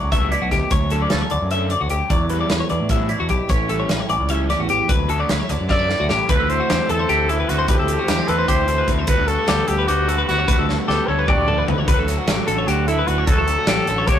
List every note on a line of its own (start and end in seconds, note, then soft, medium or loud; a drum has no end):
0.00 0.34 C#2 medium
0.00 0.71 F#3 soft
0.00 0.11 A3 soft
0.00 0.31 F#4 medium
0.00 0.12 D5 medium
0.12 0.32 B2 medium
0.12 0.32 G3 medium
0.12 0.90 A3 medium
0.12 0.32 B3 medium
0.12 0.31 D4 medium
0.12 0.32 E5 medium
0.12 kick medium
0.12 closed hi-hat medium
0.31 0.69 B2 medium
0.31 0.69 E4 soft
0.31 0.42 D5 medium
0.31 muted overdriven electric guitar stroke soft
0.31 closed hi-hat soft
0.42 0.50 B1 medium
0.42 0.51 F#4 medium
0.51 0.60 D2 medium
0.51 0.71 G4 medium
0.51 muted overdriven electric guitar stroke soft
0.51 kick medium
0.51 snare soft
0.51 closed hi-hat medium
0.71 1.89 D2 medium
0.71 1.03 D2 medium
0.71 1.30 F#3 soft
0.71 0.92 C#5 medium
0.71 muted overdriven electric guitar stroke soft
0.71 kick loud
0.71 closed hi-hat medium
0.90 1.10 D3 medium
0.90 1.11 F#3 medium
0.90 1.11 A3 medium
0.90 2.08 C#4 soft
0.90 1.11 D4 medium
0.90 1.01 A4 medium
0.90 closed hi-hat medium
1.02 1.11 D5 soft
1.10 1.19 D2 medium
1.10 2.08 A4 medium
1.10 1.21 B4 medium
1.10 muted overdriven electric guitar stroke soft
1.10 snare medium
1.10 closed hi-hat medium
1.21 1.31 C#5 medium
1.29 1.40 D2 medium
1.29 2.69 D3 medium
1.29 2.10 F#3 soft
1.29 1.51 D5 medium
1.29 muted overdriven electric guitar stroke soft
1.29 closed hi-hat soft
1.41 1.73 F#2 medium
1.51 1.71 D3 medium
1.51 1.71 F#3 medium
1.51 1.71 A3 medium
1.51 1.70 D4 medium
1.51 1.71 E5 medium
1.51 closed hi-hat medium
1.70 1.81 D5 medium
1.70 muted overdriven electric guitar stroke soft
1.70 closed hi-hat medium
1.81 1.89 D2 medium
1.81 1.90 F#4 medium
1.90 2.10 D2 medium
1.90 1.99 D2 medium
1.90 2.10 G4 medium
1.90 muted overdriven electric guitar stroke soft
1.90 closed hi-hat medium
2.10 3.48 E2 medium
2.10 2.42 E2 medium
2.10 2.70 F#3 medium
2.10 2.30 D5 medium
2.10 muted overdriven electric guitar stroke soft
2.10 kick loud
2.10 closed hi-hat medium
2.29 2.49 E3 medium
2.29 2.50 G3 medium
2.29 2.50 B3 medium
2.29 2.88 D4 soft
2.29 2.50 E4 medium
2.29 2.40 B4 medium
2.29 closed hi-hat medium
2.41 2.50 D5 medium
2.50 2.59 E2 medium
2.50 2.60 B4 medium
2.50 muted overdriven electric guitar stroke soft
2.50 snare loud
2.50 closed hi-hat medium
2.60 2.70 C#5 medium
2.69 2.79 E2 medium
2.69 3.50 E3 medium
2.69 3.53 F#3 medium
2.69 2.90 D5 medium
2.69 muted overdriven electric guitar stroke soft
2.69 closed hi-hat soft
2.80 3.12 A2 medium
2.89 3.10 E3 medium
2.89 3.09 G3 medium
2.89 3.09 B3 medium
2.89 3.47 D4 medium
2.89 3.09 E4 medium
2.89 3.10 E5 medium
2.89 kick medium
2.89 closed hi-hat medium
3.09 3.47 B2 medium
3.09 3.52 E4 soft
3.09 3.20 D5 medium
3.09 muted overdriven electric guitar stroke medium
3.09 closed hi-hat soft
3.20 3.28 E2 medium
3.20 3.30 F#4 medium
3.29 3.38 B1 medium
3.29 3.50 G4 medium
3.29 muted overdriven electric guitar stroke soft
3.29 kick medium
3.29 closed hi-hat soft
3.49 3.82 A1 medium
3.49 4.90 A2 medium
3.49 4.09 E3 medium
3.49 3.69 C#4 soft
3.49 3.91 G4 medium
3.49 3.70 C#5 medium
3.49 muted overdriven electric guitar stroke soft
3.49 kick medium
3.49 closed hi-hat medium
3.69 3.89 E3 medium
3.69 3.89 G3 medium
3.69 3.89 C#4 medium
3.69 4.30 C#4 soft
3.69 3.89 E4 medium
3.69 3.80 A4 medium
3.69 closed hi-hat soft
3.80 3.90 C#5 medium
3.89 3.98 A1 medium
3.89 4.00 B4 medium
3.89 muted overdriven electric guitar stroke soft
3.89 snare medium
3.89 closed hi-hat medium
4.00 4.09 C#5 medium
4.09 4.18 A1 medium
4.09 4.94 E3 medium
4.09 4.30 D5 medium
4.09 muted overdriven electric guitar stroke soft
4.09 closed hi-hat medium
4.20 4.52 C#2 medium
4.29 4.49 E3 medium
4.29 4.48 G3 medium
4.29 4.48 C#4 medium
4.29 4.88 C#4 medium
4.29 4.48 E4 medium
4.29 4.49 E5 medium
4.29 closed hi-hat medium
4.49 4.87 E2 medium
4.49 4.88 G4 medium
4.49 4.60 D5 medium
4.49 muted overdriven electric guitar stroke soft
4.49 snare soft
4.49 closed hi-hat soft
4.60 4.68 A1 medium
4.60 4.69 F#4 medium
4.69 4.78 A1 medium
4.69 4.90 G4 medium
4.69 muted overdriven electric guitar stroke soft
4.69 closed hi-hat medium
4.89 5.22 D2 medium
4.89 6.27 D2 medium
4.89 5.50 F#3 soft
4.89 5.10 B4 medium
4.89 muted overdriven electric guitar stroke soft
4.89 kick loud
4.89 closed hi-hat medium
5.09 5.28 D3 medium
5.09 5.20 A3 soft
5.09 5.29 A3 medium
5.09 5.29 D4 medium
5.09 5.29 F#4 medium
5.09 5.20 A4 medium
5.09 closed hi-hat medium
5.20 5.69 B3 soft
5.20 5.30 D5 medium
5.29 5.38 D2 medium
5.29 5.88 E4 medium
5.29 5.40 B4 medium
5.29 muted overdriven electric guitar stroke soft
5.29 snare medium
5.29 closed hi-hat medium
5.40 5.50 C#5 medium
5.49 5.58 D2 medium
5.49 6.30 D3 medium
5.49 6.28 F#3 medium
5.49 5.70 D5 medium
5.49 muted overdriven electric guitar stroke soft
5.49 snare soft
5.49 closed hi-hat medium
5.60 5.92 F#2 medium
5.69 5.89 D3 medium
5.69 5.79 A3 medium
5.69 5.89 A3 medium
5.69 5.89 D4 medium
5.69 5.88 F#4 medium
5.69 6.07 D5 loud
5.69 5.89 E5 medium
5.69 kick medium
5.69 snare medium
5.79 6.29 B3 soft
5.89 6.29 A2 medium
5.89 6.27 E4 medium
5.89 5.99 D5 medium
5.89 muted overdriven electric guitar stroke soft
5.89 snare medium
6.00 6.08 D2 medium
6.00 6.09 F#4 medium
6.09 6.18 A1 medium
6.09 6.29 G4 medium
6.09 muted overdriven electric guitar stroke soft
6.09 snare medium
6.28 7.28 D2 medium
6.28 6.37 D2 medium
6.28 6.69 A2 medium
6.28 6.69 E3 medium
6.28 7.66 A3 medium
6.28 6.51 A3 medium
6.28 6.70 C4 soft
6.28 6.50 C4 medium
6.28 6.48 E4 loud
6.28 6.49 G4 medium
6.28 6.39 B4 medium
6.28 6.51 B4 medium
6.28 kick loud
6.28 closed hi-hat medium
6.40 6.56 D2 medium
6.40 6.60 A4 medium
6.49 6.70 A3 medium
6.49 6.71 C4 medium
6.49 6.71 E4 medium
6.49 7.09 G4 medium
6.49 6.92 C5 medium
6.49 closed hi-hat medium
6.60 6.70 F#4 medium
6.69 6.78 E2 medium
6.69 6.90 E3 medium
6.69 6.90 A3 medium
6.69 7.49 C4 medium
6.69 6.89 C4 medium
6.69 6.88 E4 medium
6.69 6.90 G4 medium
6.69 snare medium
6.69 closed hi-hat medium
6.89 7.05 E2 medium
6.89 7.30 A2 medium
6.89 7.67 E3 medium
6.89 7.08 E3 medium
6.89 7.09 A3 medium
6.89 7.10 C4 medium
6.89 7.11 E4 medium
6.89 6.99 A4 medium
6.89 7.31 A4 medium
6.89 closed hi-hat medium
6.99 7.09 C5 medium
7.09 7.41 D2 medium
7.09 7.49 E3 medium
7.09 7.31 A3 medium
7.09 7.29 C4 medium
7.09 7.28 E4 medium
7.09 7.29 G4 medium
7.09 7.73 G4 medium
7.09 closed hi-hat medium
7.29 7.68 D2 medium
7.29 7.49 A3 medium
7.29 7.50 C4 medium
7.29 7.50 E4 medium
7.29 7.51 E4 medium
7.29 7.39 A4 medium
7.29 closed hi-hat medium
7.40 7.58 B4 medium
7.49 7.65 D2 medium
7.49 7.67 A2 medium
7.49 7.69 E3 medium
7.49 7.69 A3 medium
7.49 7.67 C4 medium
7.49 7.70 C4 medium
7.49 7.70 E4 loud
7.49 7.70 F#4 medium
7.49 snare soft
7.49 closed hi-hat medium
7.59 7.68 C5 medium
7.68 7.77 D2 medium
7.68 8.66 D2 medium
7.68 8.09 A2 medium
7.68 8.07 E3 medium
7.68 8.07 A3 medium
7.68 7.90 A3 medium
7.68 7.88 C4 soft
7.68 7.88 C4 medium
7.68 7.87 E4 medium
7.68 8.30 G4 medium
7.68 7.79 B4 medium
7.68 kick loud
7.68 closed hi-hat medium
7.79 7.95 D2 medium
7.79 7.99 A4 medium
7.88 8.08 A3 medium
7.88 8.08 C4 soft
7.88 8.09 C4 medium
7.88 8.10 E4 medium
7.88 closed hi-hat medium
7.99 8.09 F#4 medium
8.08 8.17 E2 medium
8.08 8.28 E3 medium
8.08 8.17 A3 medium
8.08 8.28 A3 medium
8.08 8.28 C4 medium
8.08 8.26 E4 medium
8.08 8.29 G4 medium
8.08 snare medium
8.08 closed hi-hat medium
8.17 8.87 C4 medium
8.27 8.45 E2 medium
8.27 8.70 A2 medium
8.27 9.05 E3 medium
8.27 8.47 E3 medium
8.27 8.48 A3 medium
8.27 8.48 C4 medium
8.27 8.49 E4 medium
8.27 8.38 A4 medium
8.27 8.50 B4 medium
8.27 closed hi-hat medium
8.39 8.48 C5 medium
8.48 8.80 D2 medium
8.48 8.88 E3 medium
8.48 8.69 A3 medium
8.48 8.68 C4 medium
8.48 8.67 E4 medium
8.48 9.09 G4 medium
8.48 8.68 G4 medium
8.48 8.89 C5 medium
8.48 kick medium
8.48 closed hi-hat medium
8.68 9.06 D2 medium
8.68 8.88 A3 medium
8.68 8.89 C4 medium
8.68 8.89 E4 medium
8.68 8.78 A4 medium
8.68 closed hi-hat medium
8.78 8.99 B4 medium
8.88 9.04 D2 medium
8.88 9.07 A2 medium
8.88 9.07 E3 loud
8.88 9.08 A3 medium
8.88 9.06 C4 medium
8.88 9.08 C4 medium
8.88 9.08 E4 medium
8.88 kick medium
8.88 closed hi-hat medium
8.99 9.08 C5 medium
9.07 10.09 D2 medium
9.07 9.16 D2 medium
9.07 9.46 D3 medium
9.07 9.29 G3 medium
9.07 9.49 B3 medium
9.07 9.28 B3 medium
9.07 9.27 D4 loud
9.07 9.29 F#4 medium
9.07 9.19 B4 medium
9.07 9.29 B4 medium
9.07 kick loud
9.07 closed hi-hat loud
9.19 9.35 D2 medium
9.19 9.39 A4 medium
9.27 9.47 G3 medium
9.27 9.48 B3 medium
9.27 9.49 D4 medium
9.27 10.68 F#4 medium
9.27 9.70 A4 medium
9.27 closed hi-hat medium
9.39 9.48 F#4 medium
9.47 9.56 D2 loud
9.47 9.69 D3 medium
9.47 9.67 G3 medium
9.47 9.66 B3 medium
9.47 9.88 B3 medium
9.47 9.66 D4 medium
9.47 9.68 G4 medium
9.47 snare medium
9.47 closed hi-hat medium
9.66 9.84 D2 medium
9.66 11.07 D3 medium
9.66 9.86 D3 medium
9.66 9.87 G3 medium
9.66 9.88 B3 medium
9.66 9.89 D4 medium
9.66 9.89 G4 medium
9.66 9.78 A4 medium
9.66 closed hi-hat medium
9.78 9.88 B4 medium
9.87 10.21 D2 loud
9.87 10.26 D3 medium
9.87 10.09 G3 medium
9.87 10.08 B3 medium
9.87 10.28 B3 medium
9.87 10.07 D4 medium
9.87 10.28 F#4 medium
9.87 10.08 G4 medium
9.87 closed hi-hat medium
10.07 10.48 D2 medium
10.07 10.27 G3 medium
10.07 10.28 B3 medium
10.07 10.29 D4 medium
10.07 10.18 A4 medium
10.07 closed hi-hat medium
10.18 10.39 B4 medium
10.27 10.45 D2 medium
10.27 10.47 D3 medium
10.27 10.47 G3 loud
10.27 10.48 B3 medium
10.27 10.47 B3 medium
10.27 10.50 D4 loud
10.27 10.65 F#4 medium
10.27 snare soft
10.27 closed hi-hat medium
10.39 10.48 C#5 medium
10.48 11.47 D2 medium
10.48 10.56 D2 medium
10.48 10.87 D3 medium
10.48 10.68 G3 medium
10.48 10.67 B3 medium
10.48 10.87 B3 medium
10.48 10.67 D4 loud
10.48 10.58 B4 medium
10.48 kick loud
10.48 closed hi-hat medium
10.58 10.74 D2 medium
10.58 10.79 A4 medium
10.67 10.87 G3 medium
10.67 10.88 B3 medium
10.67 10.89 D4 medium
10.67 11.28 F#4 medium
10.67 snare medium
10.79 10.88 F#4 medium
10.87 10.96 D2 medium
10.87 11.10 D3 medium
10.87 11.08 G3 medium
10.87 11.67 B3 medium
10.87 11.07 B3 medium
10.87 11.07 D4 medium
10.87 11.08 G4 medium
10.87 11.08 A4 medium
10.87 snare medium
11.07 11.24 D2 medium
11.07 12.48 D3 medium
11.07 11.27 D3 medium
11.07 11.27 G3 medium
11.07 11.28 B3 medium
11.07 11.29 D4 medium
11.07 11.19 A4 medium
11.07 11.29 C#5 medium
11.19 11.28 B4 medium
11.27 11.60 D2 medium
11.27 11.66 D3 medium
11.27 11.49 G3 medium
11.27 11.47 B3 medium
11.27 11.47 D4 medium
11.27 11.89 F#4 medium
11.27 11.48 G4 medium
11.27 11.67 D5 medium
11.27 kick loud
11.27 mid tom medium
11.47 11.87 D2 medium
11.47 11.67 G3 medium
11.47 11.68 B3 medium
11.47 11.69 D4 medium
11.47 11.58 A4 medium
11.47 mid tom medium
11.58 11.78 B4 medium
11.67 11.84 D2 medium
11.67 11.86 D3 medium
11.67 11.87 G3 medium
11.67 11.86 B3 medium
11.67 11.87 B3 medium
11.67 11.89 D4 loud
11.67 floor tom medium
11.78 11.88 C#5 medium
11.87 13.25 D2 medium
11.87 11.96 D2 medium
11.87 12.27 D3 medium
11.87 13.26 F#3 medium
11.87 12.10 F#3 medium
11.87 12.08 A3 medium
11.87 12.07 D4 loud
11.87 12.07 F#4 medium
11.87 12.06 B4 medium
11.87 11.98 B4 medium
11.87 kick loud
11.87 closed hi-hat medium
11.98 12.14 D2 medium
11.98 12.18 A4 medium
12.07 12.27 F#3 medium
12.07 12.28 A3 medium
12.07 12.29 D4 medium
12.07 13.25 F#4 medium
12.07 snare soft
12.07 closed hi-hat medium
12.18 12.28 F#4 medium
12.27 12.36 A1 medium
12.27 12.49 D3 medium
12.27 12.48 F#3 medium
12.27 12.48 A3 medium
12.27 12.46 D4 medium
12.27 12.47 G4 medium
12.27 snare medium
12.27 closed hi-hat medium
12.47 12.64 A1 medium
12.47 13.86 D3 medium
12.47 12.66 D3 medium
12.47 12.68 F#3 medium
12.47 12.69 A3 medium
12.47 12.69 D4 medium
12.47 12.69 A4 medium
12.47 12.58 A4 medium
12.47 closed hi-hat medium
12.58 12.68 C#5 medium
12.68 13.00 D2 medium
12.68 13.05 D3 medium
12.68 12.89 F#3 medium
12.68 12.89 A3 medium
12.68 12.86 D4 medium
12.68 12.89 F#4 medium
12.68 12.88 G4 medium
12.68 closed hi-hat medium
12.88 13.28 A2 medium
12.88 13.06 F#3 medium
12.88 13.08 A3 medium
12.88 13.08 D4 medium
12.88 13.09 E4 medium
12.88 12.98 A4 medium
12.88 closed hi-hat medium
12.99 13.18 B4 medium
13.06 13.23 D2 medium
13.06 13.26 D3 medium
13.06 13.27 F#3 medium
13.06 13.28 A3 loud
13.06 13.29 C#4 medium
13.06 13.28 D4 loud
13.06 13.26 F#4 medium
13.06 closed hi-hat medium
13.18 13.29 C#5 medium
13.26 14.19 D2 medium
13.26 13.36 D2 medium
13.26 13.66 D3 medium
13.26 14.19 F#3 medium
13.26 13.49 F#3 loud
13.26 13.48 A3 loud
13.26 13.46 D4 loud
13.26 13.47 F#4 medium
13.26 14.09 A4 medium
13.26 13.38 B4 medium
13.26 kick loud
13.26 closed hi-hat medium
13.37 13.53 D2 medium
13.37 13.58 A4 medium
13.47 13.67 F#3 medium
13.47 13.68 A3 medium
13.47 13.68 D4 medium
13.47 14.07 F#4 medium
13.47 closed hi-hat medium
13.58 13.68 F#4 medium
13.67 13.75 A1 loud
13.67 13.89 D3 medium
13.67 13.89 F#3 medium
13.67 13.88 A3 medium
13.67 13.87 D4 medium
13.67 13.88 G4 medium
13.67 snare loud
13.67 closed hi-hat medium
13.87 14.04 A1 medium
13.87 14.19 D3 medium
13.87 14.07 D3 medium
13.87 14.08 F#3 medium
13.87 14.09 A3 medium
13.87 14.09 D4 medium
13.87 13.98 A4 medium
13.87 closed hi-hat medium
13.98 14.08 C#5 medium
14.07 14.19 D2 medium
14.07 14.19 D3 medium
14.07 14.19 F#3 medium
14.07 14.19 A3 medium
14.07 14.19 D4 medium
14.07 14.19 F#4 medium
14.07 14.19 G4 medium
14.07 14.19 C#5 loud
14.07 kick loud
14.07 closed hi-hat medium